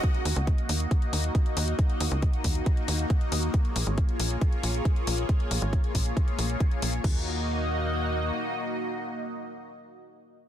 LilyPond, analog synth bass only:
\new Staff \with { instrumentName = "Analog synth bass" } { \clef bass \time 4/4 \key ees \minor \tempo 4 = 137 r8 ees,16 des,8 r16 ees,8 r8 ees,8 r8 ees,8 | r8 ees,16 des,8 r16 ees,8 r8 ees,8 r8 ees,8 | r8 bes,,16 aes,,8 r16 bes,,8 r8 bes,,8 r8 bes,,8 | r8 bes,,16 aes,,8 r16 bes,,8 r8 bes,,8 r8 bes,,8 |
ees,2. r4 | r1 | }